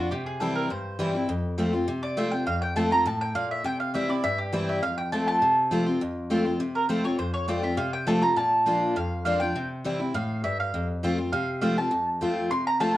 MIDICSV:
0, 0, Header, 1, 3, 480
1, 0, Start_track
1, 0, Key_signature, -1, "major"
1, 0, Tempo, 295130
1, 179, Time_signature, 4, 2, 24, 8
1, 21096, End_track
2, 0, Start_track
2, 0, Title_t, "Mandolin"
2, 0, Program_c, 0, 25
2, 0, Note_on_c, 0, 66, 82
2, 171, Note_off_c, 0, 66, 0
2, 178, Note_on_c, 0, 67, 83
2, 417, Note_off_c, 0, 67, 0
2, 425, Note_on_c, 0, 68, 79
2, 650, Note_on_c, 0, 69, 77
2, 652, Note_off_c, 0, 68, 0
2, 893, Note_off_c, 0, 69, 0
2, 901, Note_on_c, 0, 70, 89
2, 1130, Note_off_c, 0, 70, 0
2, 1153, Note_on_c, 0, 72, 80
2, 1821, Note_off_c, 0, 72, 0
2, 3299, Note_on_c, 0, 74, 96
2, 3528, Note_off_c, 0, 74, 0
2, 3534, Note_on_c, 0, 76, 89
2, 3761, Note_off_c, 0, 76, 0
2, 3767, Note_on_c, 0, 79, 95
2, 4002, Note_off_c, 0, 79, 0
2, 4014, Note_on_c, 0, 77, 89
2, 4250, Note_off_c, 0, 77, 0
2, 4256, Note_on_c, 0, 79, 102
2, 4484, Note_off_c, 0, 79, 0
2, 4491, Note_on_c, 0, 81, 95
2, 4732, Note_off_c, 0, 81, 0
2, 4749, Note_on_c, 0, 82, 113
2, 4972, Note_off_c, 0, 82, 0
2, 4991, Note_on_c, 0, 81, 95
2, 5217, Note_off_c, 0, 81, 0
2, 5223, Note_on_c, 0, 79, 105
2, 5446, Note_off_c, 0, 79, 0
2, 5452, Note_on_c, 0, 77, 84
2, 5692, Note_off_c, 0, 77, 0
2, 5712, Note_on_c, 0, 76, 80
2, 5934, Note_off_c, 0, 76, 0
2, 5946, Note_on_c, 0, 79, 106
2, 6172, Note_off_c, 0, 79, 0
2, 6179, Note_on_c, 0, 77, 92
2, 6407, Note_off_c, 0, 77, 0
2, 6416, Note_on_c, 0, 76, 80
2, 6654, Note_off_c, 0, 76, 0
2, 6663, Note_on_c, 0, 74, 84
2, 6889, Note_off_c, 0, 74, 0
2, 6893, Note_on_c, 0, 76, 99
2, 7132, Note_off_c, 0, 76, 0
2, 7132, Note_on_c, 0, 67, 75
2, 7363, Note_off_c, 0, 67, 0
2, 7376, Note_on_c, 0, 72, 87
2, 7613, Note_off_c, 0, 72, 0
2, 7633, Note_on_c, 0, 76, 89
2, 7848, Note_off_c, 0, 76, 0
2, 7854, Note_on_c, 0, 77, 98
2, 8091, Note_off_c, 0, 77, 0
2, 8098, Note_on_c, 0, 79, 106
2, 8325, Note_off_c, 0, 79, 0
2, 8336, Note_on_c, 0, 81, 92
2, 8565, Note_off_c, 0, 81, 0
2, 8585, Note_on_c, 0, 81, 101
2, 9028, Note_off_c, 0, 81, 0
2, 10980, Note_on_c, 0, 70, 89
2, 11198, Note_off_c, 0, 70, 0
2, 11204, Note_on_c, 0, 72, 82
2, 11446, Note_off_c, 0, 72, 0
2, 11460, Note_on_c, 0, 73, 100
2, 11680, Note_off_c, 0, 73, 0
2, 11687, Note_on_c, 0, 72, 79
2, 11923, Note_off_c, 0, 72, 0
2, 11929, Note_on_c, 0, 73, 96
2, 12160, Note_off_c, 0, 73, 0
2, 12171, Note_on_c, 0, 74, 77
2, 12409, Note_off_c, 0, 74, 0
2, 12419, Note_on_c, 0, 76, 85
2, 12633, Note_off_c, 0, 76, 0
2, 12639, Note_on_c, 0, 77, 86
2, 12884, Note_off_c, 0, 77, 0
2, 12900, Note_on_c, 0, 79, 103
2, 13126, Note_off_c, 0, 79, 0
2, 13133, Note_on_c, 0, 81, 92
2, 13370, Note_off_c, 0, 81, 0
2, 13377, Note_on_c, 0, 82, 110
2, 13605, Note_off_c, 0, 82, 0
2, 13617, Note_on_c, 0, 81, 99
2, 14290, Note_off_c, 0, 81, 0
2, 14584, Note_on_c, 0, 77, 93
2, 15025, Note_off_c, 0, 77, 0
2, 15046, Note_on_c, 0, 77, 91
2, 15279, Note_off_c, 0, 77, 0
2, 15285, Note_on_c, 0, 79, 107
2, 15738, Note_off_c, 0, 79, 0
2, 16504, Note_on_c, 0, 77, 91
2, 16947, Note_off_c, 0, 77, 0
2, 16979, Note_on_c, 0, 76, 83
2, 17215, Note_off_c, 0, 76, 0
2, 17236, Note_on_c, 0, 77, 89
2, 17676, Note_off_c, 0, 77, 0
2, 18419, Note_on_c, 0, 77, 100
2, 18865, Note_off_c, 0, 77, 0
2, 18898, Note_on_c, 0, 77, 97
2, 19136, Note_off_c, 0, 77, 0
2, 19158, Note_on_c, 0, 81, 94
2, 19598, Note_off_c, 0, 81, 0
2, 20341, Note_on_c, 0, 84, 106
2, 20579, Note_off_c, 0, 84, 0
2, 20605, Note_on_c, 0, 82, 111
2, 20817, Note_off_c, 0, 82, 0
2, 20823, Note_on_c, 0, 81, 102
2, 21060, Note_off_c, 0, 81, 0
2, 21096, End_track
3, 0, Start_track
3, 0, Title_t, "Steel-string acoustic guitar"
3, 0, Program_c, 1, 25
3, 0, Note_on_c, 1, 62, 54
3, 0, Note_on_c, 1, 65, 64
3, 171, Note_off_c, 1, 65, 0
3, 184, Note_off_c, 1, 62, 0
3, 188, Note_on_c, 1, 48, 83
3, 658, Note_on_c, 1, 52, 83
3, 664, Note_on_c, 1, 55, 86
3, 674, Note_on_c, 1, 60, 98
3, 684, Note_on_c, 1, 64, 88
3, 1096, Note_off_c, 1, 48, 0
3, 1114, Note_off_c, 1, 52, 0
3, 1118, Note_off_c, 1, 55, 0
3, 1123, Note_off_c, 1, 60, 0
3, 1128, Note_off_c, 1, 64, 0
3, 1141, Note_on_c, 1, 43, 91
3, 1606, Note_on_c, 1, 52, 98
3, 1615, Note_on_c, 1, 55, 91
3, 1623, Note_on_c, 1, 60, 92
3, 1629, Note_on_c, 1, 64, 96
3, 1842, Note_off_c, 1, 64, 0
3, 1848, Note_off_c, 1, 52, 0
3, 1852, Note_off_c, 1, 55, 0
3, 1857, Note_off_c, 1, 60, 0
3, 1861, Note_on_c, 1, 64, 62
3, 1886, Note_on_c, 1, 60, 49
3, 2052, Note_off_c, 1, 43, 0
3, 2087, Note_off_c, 1, 64, 0
3, 2094, Note_on_c, 1, 41, 87
3, 2100, Note_off_c, 1, 60, 0
3, 2567, Note_on_c, 1, 53, 81
3, 2573, Note_on_c, 1, 57, 89
3, 2583, Note_on_c, 1, 60, 90
3, 2592, Note_on_c, 1, 65, 84
3, 2797, Note_off_c, 1, 65, 0
3, 2808, Note_off_c, 1, 53, 0
3, 2811, Note_off_c, 1, 57, 0
3, 2816, Note_off_c, 1, 60, 0
3, 2817, Note_on_c, 1, 65, 57
3, 2837, Note_on_c, 1, 60, 51
3, 3009, Note_off_c, 1, 41, 0
3, 3045, Note_off_c, 1, 65, 0
3, 3054, Note_on_c, 1, 48, 95
3, 3055, Note_off_c, 1, 60, 0
3, 3529, Note_on_c, 1, 53, 93
3, 3537, Note_on_c, 1, 57, 95
3, 3546, Note_on_c, 1, 60, 101
3, 3552, Note_on_c, 1, 65, 102
3, 3753, Note_off_c, 1, 65, 0
3, 3769, Note_off_c, 1, 53, 0
3, 3773, Note_off_c, 1, 57, 0
3, 3773, Note_on_c, 1, 65, 58
3, 3777, Note_off_c, 1, 60, 0
3, 3798, Note_on_c, 1, 60, 51
3, 3968, Note_off_c, 1, 48, 0
3, 4002, Note_off_c, 1, 65, 0
3, 4011, Note_on_c, 1, 41, 87
3, 4015, Note_off_c, 1, 60, 0
3, 4484, Note_on_c, 1, 53, 87
3, 4492, Note_on_c, 1, 57, 92
3, 4501, Note_on_c, 1, 60, 94
3, 4504, Note_on_c, 1, 65, 99
3, 4708, Note_off_c, 1, 65, 0
3, 4726, Note_off_c, 1, 53, 0
3, 4727, Note_on_c, 1, 65, 64
3, 4730, Note_off_c, 1, 57, 0
3, 4734, Note_off_c, 1, 60, 0
3, 4754, Note_on_c, 1, 60, 52
3, 4926, Note_off_c, 1, 41, 0
3, 4959, Note_off_c, 1, 65, 0
3, 4967, Note_on_c, 1, 45, 98
3, 4973, Note_off_c, 1, 60, 0
3, 5428, Note_off_c, 1, 45, 0
3, 5450, Note_on_c, 1, 46, 95
3, 5909, Note_off_c, 1, 46, 0
3, 5926, Note_on_c, 1, 48, 97
3, 6405, Note_on_c, 1, 52, 84
3, 6416, Note_on_c, 1, 55, 90
3, 6427, Note_on_c, 1, 60, 103
3, 6429, Note_on_c, 1, 64, 102
3, 6629, Note_off_c, 1, 64, 0
3, 6646, Note_off_c, 1, 52, 0
3, 6648, Note_on_c, 1, 64, 65
3, 6651, Note_off_c, 1, 55, 0
3, 6651, Note_off_c, 1, 60, 0
3, 6670, Note_on_c, 1, 60, 50
3, 6843, Note_off_c, 1, 48, 0
3, 6879, Note_off_c, 1, 64, 0
3, 6890, Note_off_c, 1, 60, 0
3, 6892, Note_on_c, 1, 43, 98
3, 7365, Note_on_c, 1, 52, 91
3, 7376, Note_on_c, 1, 55, 101
3, 7381, Note_on_c, 1, 60, 98
3, 7387, Note_on_c, 1, 64, 106
3, 7806, Note_off_c, 1, 43, 0
3, 7826, Note_off_c, 1, 52, 0
3, 7831, Note_off_c, 1, 55, 0
3, 7833, Note_off_c, 1, 60, 0
3, 7837, Note_off_c, 1, 64, 0
3, 7857, Note_on_c, 1, 41, 93
3, 8334, Note_on_c, 1, 53, 91
3, 8345, Note_on_c, 1, 57, 94
3, 8354, Note_on_c, 1, 60, 93
3, 8360, Note_on_c, 1, 65, 88
3, 8767, Note_off_c, 1, 41, 0
3, 8789, Note_off_c, 1, 53, 0
3, 8795, Note_off_c, 1, 57, 0
3, 8800, Note_off_c, 1, 60, 0
3, 8803, Note_off_c, 1, 65, 0
3, 8816, Note_on_c, 1, 48, 101
3, 9287, Note_on_c, 1, 53, 95
3, 9299, Note_on_c, 1, 57, 101
3, 9306, Note_on_c, 1, 60, 98
3, 9314, Note_on_c, 1, 65, 102
3, 9514, Note_off_c, 1, 65, 0
3, 9525, Note_off_c, 1, 53, 0
3, 9531, Note_off_c, 1, 57, 0
3, 9534, Note_on_c, 1, 65, 64
3, 9535, Note_off_c, 1, 60, 0
3, 9561, Note_on_c, 1, 60, 55
3, 9727, Note_off_c, 1, 48, 0
3, 9761, Note_off_c, 1, 65, 0
3, 9774, Note_off_c, 1, 60, 0
3, 9778, Note_on_c, 1, 41, 92
3, 10247, Note_on_c, 1, 53, 88
3, 10255, Note_on_c, 1, 57, 88
3, 10264, Note_on_c, 1, 60, 87
3, 10272, Note_on_c, 1, 65, 92
3, 10469, Note_off_c, 1, 65, 0
3, 10485, Note_off_c, 1, 53, 0
3, 10489, Note_off_c, 1, 57, 0
3, 10489, Note_on_c, 1, 65, 64
3, 10493, Note_off_c, 1, 60, 0
3, 10511, Note_on_c, 1, 60, 52
3, 10687, Note_off_c, 1, 41, 0
3, 10718, Note_off_c, 1, 65, 0
3, 10729, Note_off_c, 1, 60, 0
3, 10732, Note_on_c, 1, 48, 97
3, 11201, Note_on_c, 1, 53, 93
3, 11210, Note_on_c, 1, 57, 90
3, 11213, Note_on_c, 1, 60, 99
3, 11221, Note_on_c, 1, 65, 97
3, 11430, Note_off_c, 1, 65, 0
3, 11442, Note_off_c, 1, 53, 0
3, 11447, Note_off_c, 1, 57, 0
3, 11448, Note_off_c, 1, 60, 0
3, 11450, Note_on_c, 1, 65, 65
3, 11475, Note_on_c, 1, 60, 50
3, 11645, Note_off_c, 1, 48, 0
3, 11678, Note_off_c, 1, 65, 0
3, 11685, Note_on_c, 1, 41, 89
3, 11691, Note_off_c, 1, 60, 0
3, 12160, Note_on_c, 1, 53, 90
3, 12169, Note_on_c, 1, 57, 91
3, 12176, Note_on_c, 1, 60, 98
3, 12182, Note_on_c, 1, 65, 97
3, 12387, Note_off_c, 1, 65, 0
3, 12401, Note_off_c, 1, 53, 0
3, 12406, Note_off_c, 1, 57, 0
3, 12407, Note_on_c, 1, 65, 63
3, 12409, Note_off_c, 1, 60, 0
3, 12428, Note_on_c, 1, 60, 52
3, 12601, Note_off_c, 1, 41, 0
3, 12637, Note_off_c, 1, 65, 0
3, 12640, Note_on_c, 1, 48, 96
3, 12648, Note_off_c, 1, 60, 0
3, 13120, Note_on_c, 1, 53, 97
3, 13129, Note_on_c, 1, 57, 96
3, 13139, Note_on_c, 1, 60, 106
3, 13143, Note_on_c, 1, 65, 104
3, 13347, Note_off_c, 1, 65, 0
3, 13362, Note_off_c, 1, 53, 0
3, 13366, Note_off_c, 1, 57, 0
3, 13366, Note_on_c, 1, 65, 67
3, 13371, Note_off_c, 1, 60, 0
3, 13394, Note_on_c, 1, 60, 56
3, 13559, Note_off_c, 1, 48, 0
3, 13597, Note_off_c, 1, 65, 0
3, 13605, Note_on_c, 1, 46, 89
3, 13611, Note_off_c, 1, 60, 0
3, 14085, Note_on_c, 1, 53, 87
3, 14095, Note_on_c, 1, 58, 92
3, 14102, Note_on_c, 1, 62, 89
3, 14112, Note_on_c, 1, 65, 97
3, 14522, Note_off_c, 1, 46, 0
3, 14546, Note_off_c, 1, 53, 0
3, 14550, Note_off_c, 1, 58, 0
3, 14554, Note_off_c, 1, 62, 0
3, 14559, Note_off_c, 1, 65, 0
3, 14575, Note_on_c, 1, 41, 97
3, 15050, Note_on_c, 1, 53, 101
3, 15058, Note_on_c, 1, 58, 89
3, 15067, Note_on_c, 1, 62, 100
3, 15076, Note_on_c, 1, 65, 106
3, 15282, Note_off_c, 1, 65, 0
3, 15287, Note_off_c, 1, 53, 0
3, 15292, Note_off_c, 1, 58, 0
3, 15296, Note_off_c, 1, 62, 0
3, 15302, Note_on_c, 1, 65, 69
3, 15324, Note_on_c, 1, 62, 50
3, 15488, Note_off_c, 1, 41, 0
3, 15525, Note_off_c, 1, 65, 0
3, 15537, Note_off_c, 1, 62, 0
3, 15540, Note_on_c, 1, 48, 94
3, 16009, Note_on_c, 1, 52, 81
3, 16019, Note_on_c, 1, 55, 100
3, 16027, Note_on_c, 1, 60, 93
3, 16031, Note_on_c, 1, 64, 91
3, 16237, Note_off_c, 1, 64, 0
3, 16248, Note_off_c, 1, 52, 0
3, 16253, Note_off_c, 1, 55, 0
3, 16257, Note_off_c, 1, 60, 0
3, 16257, Note_on_c, 1, 64, 61
3, 16279, Note_on_c, 1, 60, 45
3, 16451, Note_off_c, 1, 48, 0
3, 16483, Note_off_c, 1, 64, 0
3, 16494, Note_off_c, 1, 60, 0
3, 16496, Note_on_c, 1, 45, 97
3, 16952, Note_off_c, 1, 45, 0
3, 16976, Note_on_c, 1, 43, 93
3, 17433, Note_off_c, 1, 43, 0
3, 17464, Note_on_c, 1, 41, 87
3, 17940, Note_on_c, 1, 53, 88
3, 17948, Note_on_c, 1, 57, 84
3, 17955, Note_on_c, 1, 60, 95
3, 17959, Note_on_c, 1, 65, 96
3, 18165, Note_off_c, 1, 65, 0
3, 18174, Note_off_c, 1, 53, 0
3, 18179, Note_off_c, 1, 57, 0
3, 18182, Note_off_c, 1, 60, 0
3, 18185, Note_on_c, 1, 65, 60
3, 18209, Note_on_c, 1, 60, 49
3, 18374, Note_off_c, 1, 41, 0
3, 18409, Note_off_c, 1, 65, 0
3, 18421, Note_off_c, 1, 60, 0
3, 18426, Note_on_c, 1, 48, 92
3, 18892, Note_on_c, 1, 53, 92
3, 18899, Note_on_c, 1, 57, 91
3, 18908, Note_on_c, 1, 60, 109
3, 18914, Note_on_c, 1, 65, 98
3, 19116, Note_off_c, 1, 65, 0
3, 19131, Note_off_c, 1, 53, 0
3, 19135, Note_off_c, 1, 57, 0
3, 19136, Note_on_c, 1, 65, 58
3, 19139, Note_off_c, 1, 60, 0
3, 19161, Note_on_c, 1, 60, 54
3, 19336, Note_off_c, 1, 48, 0
3, 19365, Note_off_c, 1, 65, 0
3, 19370, Note_on_c, 1, 41, 91
3, 19377, Note_off_c, 1, 60, 0
3, 19855, Note_on_c, 1, 53, 82
3, 19864, Note_on_c, 1, 57, 86
3, 19876, Note_on_c, 1, 60, 94
3, 19879, Note_on_c, 1, 65, 97
3, 20288, Note_off_c, 1, 41, 0
3, 20314, Note_off_c, 1, 53, 0
3, 20318, Note_off_c, 1, 57, 0
3, 20324, Note_off_c, 1, 60, 0
3, 20326, Note_off_c, 1, 65, 0
3, 20342, Note_on_c, 1, 48, 94
3, 20818, Note_on_c, 1, 53, 98
3, 20827, Note_on_c, 1, 57, 102
3, 20831, Note_on_c, 1, 60, 103
3, 20838, Note_on_c, 1, 65, 104
3, 21032, Note_off_c, 1, 65, 0
3, 21055, Note_off_c, 1, 53, 0
3, 21060, Note_off_c, 1, 57, 0
3, 21062, Note_off_c, 1, 60, 0
3, 21096, Note_off_c, 1, 48, 0
3, 21096, End_track
0, 0, End_of_file